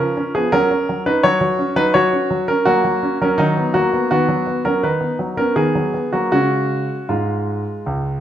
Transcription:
0.00 0.18 F3 medium
0.00 0.16 C#4 medium
0.00 0.31 A#4 medium
0.17 0.36 C#4 medium
0.35 0.53 F3 medium
0.35 0.52 B3 medium
0.35 0.53 G#4 medium
0.52 0.70 F#3 medium
0.52 0.69 C#4 medium
0.52 1.02 A#4 loud
0.71 0.89 C#4 medium
0.89 1.07 F#3 medium
1.06 1.25 C#4 medium
1.06 1.23 D#4 medium
1.06 1.24 B4 medium
1.23 1.39 F#3 medium
1.23 1.73 F#4 medium
1.23 1.77 C#5 loud
1.41 1.60 F#3 medium
1.59 1.78 C#4 medium
1.76 1.93 F#3 medium
1.76 1.94 D#4 medium
1.76 1.94 B4 loud
1.94 2.12 F#3 medium
1.94 2.45 F#4 medium
1.94 2.48 C#5 loud
2.13 2.32 C#4 medium
2.30 2.49 F#3 medium
2.48 2.66 C#4 medium
2.48 2.66 A#4 loud
2.65 2.83 F#3 medium
2.65 3.17 A#3 medium
2.65 3.16 F#4 loud
2.84 3.04 F#3 medium
3.03 3.22 C#4 medium
3.21 3.38 F#3 medium
3.21 3.39 C#4 medium
3.21 3.39 A#4 medium
3.38 3.56 D#3 medium
3.38 3.73 F#3 medium
3.38 3.74 D#4 medium
3.57 3.76 B3 medium
3.74 3.94 F#3 medium
3.74 4.09 A#3 medium
3.74 4.07 F#4 medium
3.93 4.10 B3 medium
4.11 4.29 D#3 medium
4.11 4.45 B3 medium
4.11 4.61 F#4 medium
4.29 4.48 F#3 medium
4.47 4.66 B3 medium
4.65 4.85 F#3 medium
4.65 4.83 C#4 medium
4.65 4.83 A#4 medium
4.83 5.01 D#3 medium
4.83 5.35 D#4 medium
4.83 5.17 B4 medium
5.01 5.21 B3 medium
5.19 5.39 F#3 soft
5.37 5.55 B3 medium
5.37 5.56 C#4 medium
5.37 5.57 A#4 medium
5.56 5.75 D#3 medium
5.56 5.93 B3 medium
5.56 6.13 G#4 medium
5.75 5.95 F#3 soft
5.94 6.14 B3 medium
6.13 6.33 F#3 medium
6.13 6.32 A#3 medium
6.13 6.30 F#4 medium
6.32 6.87 C#3 medium
6.32 6.94 G#3 soft
6.32 7.06 C#4 medium
6.32 7.09 F#4 medium
7.09 7.62 G#2 medium
7.09 8.20 G#3 medium
7.09 8.20 F4 medium
7.86 8.20 C#2 medium

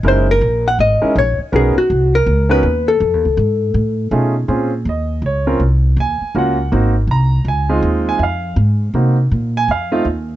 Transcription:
0.03 0.40 F#1 medium
0.03 0.25 G#3 medium
0.03 0.25 C#4 medium
0.03 0.25 D#4 medium
0.03 0.25 E4 medium
0.03 0.25 A#4 medium
0.08 0.28 C5 medium
0.31 0.67 A#4 loud
0.41 0.77 A#1 medium
0.68 0.80 F#5 medium
0.79 1.00 G#1 medium
0.79 1.14 D#5 medium
1.01 1.14 G#3 medium
1.01 1.14 C#4 medium
1.01 1.14 D#4 medium
1.01 1.14 E4 medium
1.01 1.14 A#4 medium
1.01 muted upright bass stroke soft
1.15 1.37 A#1 medium
1.15 1.39 C#5 medium
1.38 muted upright bass stroke soft
1.52 1.74 B1 medium
1.52 1.73 B3 medium
1.52 1.74 C#4 medium
1.52 1.74 D#4 medium
1.52 1.74 F#4 medium
1.52 1.76 G#4 medium
1.52 1.74 A#4 medium
1.76 2.15 F#4 medium
1.76 muted upright bass stroke soft
1.90 2.26 C2 medium
2.15 2.51 A#4 medium
2.26 2.62 C#2 medium
2.49 2.62 B3 medium
2.49 2.62 C#4 medium
2.49 2.62 D#4 medium
2.49 2.62 F#4 medium
2.49 2.62 A#4 medium
2.49 2.89 B4 medium
2.63 2.99 D#2 medium
2.88 4.09 A4 medium
3.00 3.13 F2 medium
3.13 3.24 D#2 soft
3.25 3.37 C#2 medium
3.37 3.74 G#2 medium
3.74 4.11 A2 medium
4.11 4.48 B2 medium
4.11 4.33 A3 medium
4.11 4.33 C#4 medium
4.11 4.33 D#4 medium
4.11 4.33 F4 medium
4.11 4.33 G#4 medium
4.48 4.85 A#2 medium
4.48 4.70 C4 medium
4.48 4.70 C#4 medium
4.48 4.70 F4 medium
4.48 4.70 G#4 medium
4.85 5.21 D#2 medium
4.85 5.22 D#5 medium
5.22 5.59 C#2 medium
5.26 5.59 C#5 medium
5.47 5.59 C4 medium
5.47 5.59 C#4 medium
5.47 5.59 F4 medium
5.47 5.59 A#4 medium
5.60 5.96 C2 medium
5.97 6.19 D#2 medium
5.97 6.34 G#5 medium
6.21 muted upright bass stroke soft
6.35 6.71 C#2 medium
6.35 6.56 A#3 medium
6.35 6.56 C#4 medium
6.35 6.56 F4 medium
6.35 6.56 F#4 medium
6.35 6.71 F#5 medium
6.72 7.07 G#1 medium
6.72 6.93 A#3 medium
6.72 6.93 C4 medium
6.72 6.93 D#4 medium
6.72 6.93 F#4 medium
7.07 7.44 C2 medium
7.07 7.45 A#5 medium
7.45 7.81 C#2 medium
7.45 7.82 G#5 medium
7.69 8.17 G#3 medium
7.69 8.17 C4 medium
7.69 8.17 D#4 medium
7.69 8.18 F4 medium
7.83 8.18 D#2 medium
8.09 8.21 G#5 medium
8.19 8.56 F2 medium
8.19 8.21 E5 soft
8.23 8.56 F5 medium
8.56 8.93 G#2 medium
8.94 9.30 C3 medium
8.94 9.15 A#3 medium
8.94 9.16 C4 medium
8.94 9.16 D#4 medium
8.94 9.16 F#4 medium
9.31 9.67 A#2 medium
9.57 9.69 G#5 loud
9.68 10.04 F2 medium
9.68 10.04 F5 medium
9.92 10.04 A3 medium
9.92 10.04 C4 medium
9.92 10.04 D#4 medium
9.92 10.04 F4 medium
10.05 10.36 D#2 medium

